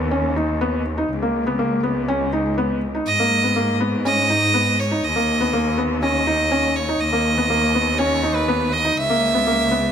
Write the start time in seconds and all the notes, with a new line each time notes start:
Already playing: D#2
0.11 C#4
0.36 D#4
0.61 B3
0.98 D#4
1.10 C#2
1.22 A#3
1.47 B3
1.59 A#3
1.83 B3
2.08 C#4
2.33 D#4
2.58 B3
2.95 D#4
3.07 G#2 D#5
3.20 A#3
3.44 B3
3.56 A#3
3.80 B3
4.05 C#4 D#5
4.30 D#4
4.54 B3
4.80 C#5
4.91 D#4
5.04 D#2 D#5
5.16 A#3
5.41 B3
5.53 A#3
5.78 B3
6.02 C#4 D#5
6.27 D#4
6.52 C#4
6.76 C#5
6.89 D#4
7.00 D#2 D#5
7.13 A#3
7.38 B3
7.50 A#3
7.75 B3
7.98 C#4 C#5
8.23 D#4
8.35 B4
8.48 B3
8.72 D#5
8.85 D#4
8.97 C#2 E5
9.10 A#3
9.34 B3
9.47 A#3
9.71 B3